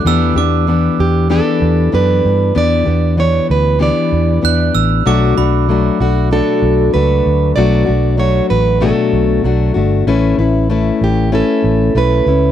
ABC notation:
X:1
M:4/4
L:1/16
Q:"Swing 16ths" 1/4=96
K:Bm
V:1 name="Glockenspiel"
e'2 d'3 z8 z3 | z12 f'2 e'2 | d'2 b3 z8 z3 | z16 |
z16 |]
V:2 name="Steel-string acoustic guitar"
z6 G2 A4 B4 | d4 c2 B2 d6 z2 | z6 F2 A4 B4 | d4 c2 B2 A6 z2 |
z6 G2 A4 B4 |]
V:3 name="Steel-string acoustic guitar"
[E,B,DG]2 [B,DG]2 [E,B,DG]4 [E,B,DG]4 [E,B,DG]4 | [E,B,DG]2 [B,DG]2 [E,B,DG]4 [E,B,DG]4 [E,B,DG]4 | [B,,F,A,DF]2 [A,DF]2 [F,A,DF]2 [A,DF]2 [B,,F,A,DF]4 [F,A,DF]4 | [B,,F,A,DF]2 [A,DF]2 [F,A,DF]4 [B,,F,A,DF]4 [F,A,DF]2 [A,DF]2 |
[A,CEB]2 [CEB]2 [A,CEB]4 [A,CEB]4 [A,CEB]2 [CEB]2 |]
V:4 name="Fingered electric bass" clef=bass
E,,2 E,,4 E,,3 z E,,2 F,,2 G,,2 | E,,2 E,,4 D,,3 z E,,2 E,,2 A,,,2 | B,,,2 B,,,4 B,,,3 z B,,,2 C,,2 D,,2 | B,,,2 B,,,4 A,,,3 z B,,,2 B,,,2 G,,,2 |
A,,,2 A,,,4 A,,,3 z A,,,2 B,,,2 C,,2 |]